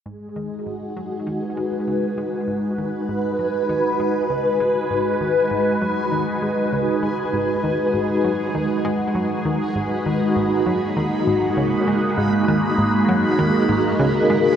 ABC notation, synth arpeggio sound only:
X:1
M:4/4
L:1/8
Q:1/4=99
K:G#m
V:1 name="Synth arpeggio sound" clef=bass
G,, D, G,, F, D, G, C, G, | G,, D, G,, F, D, G, C, G, | G,, D, G,, F, D, G, C, G, | G,, D, G,, F, D, G, F, D, |
G,, D, G,, F, D, G,, C, G, | G,, D, G,, F, D, G,, C, G, |]